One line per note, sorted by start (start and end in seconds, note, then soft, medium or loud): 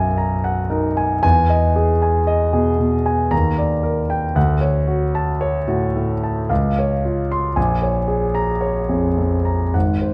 0.00 1.19 B1 medium
0.00 1.25 F#2 soft
0.00 0.70 A#4 medium
0.00 0.44 F#5 soft
0.00 0.97 G#5 soft
0.00 0.18 A#5 medium
0.18 0.60 A#5 soft
0.44 0.86 F#5 soft
0.70 1.12 D#4 soft
0.70 1.12 A#4 soft
0.97 1.21 G#5 medium
1.23 3.28 E2 medium
1.23 1.65 G#5 medium
1.50 1.92 D#5 soft
1.76 2.18 G#4 soft
2.02 2.44 G#5 soft
2.27 2.69 D#5 medium
2.53 2.77 B2 soft
2.53 2.95 G#4 medium
2.79 3.21 B2 soft
3.06 3.32 G#5 soft
3.31 4.33 D#2 medium
3.31 3.73 A#5 medium
3.58 4.00 D5 soft
3.83 4.25 A#4 soft
4.10 4.36 G5 soft
4.35 6.46 D2 medium
4.35 4.77 F#5 medium
4.61 5.03 C#5 soft
4.87 5.30 F#4 soft
5.15 5.58 A5 medium
5.41 5.84 C#5 medium
5.68 5.94 A2 soft
5.68 6.12 F#4 medium
5.96 6.39 A2 soft
6.24 6.51 A5 soft
6.49 7.53 C#2 medium
6.49 6.93 F5 soft
6.79 7.21 C#5 soft
7.05 7.47 F4 soft
7.32 7.57 C6 medium
7.56 9.70 A#1 medium
7.56 7.98 G#5 soft
7.82 8.25 C#5 soft
8.08 8.51 G#4 soft
8.35 8.79 A#5 medium
8.61 9.06 C#5 soft
8.89 9.16 F2 soft
8.89 9.34 G#4 soft
9.18 9.63 F2 soft
9.45 9.74 A#5 soft
9.74 10.14 G#1 soft
9.74 10.14 F#5 soft
10.02 10.14 C5 soft